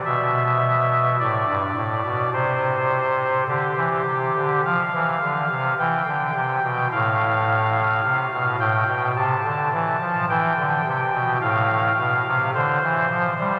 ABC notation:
X:1
M:4/4
L:1/16
Q:1/4=53
K:C
V:1 name="Pipe organ"
e4 d4 c4 G4 | f4 g4 f6 g2 | a4 g4 f4 c4 |]
V:2 name="Pipe organ" clef=bass
B,,4 A,, G,, A,, B,, C,4 D, E, C, D, | F, E, D, C, E, D, C, B,, A,,4 C, B,, A,, B,, | C, D, E, F, E, D, C, B,, A,,2 B,, C, D, E, F, G, |]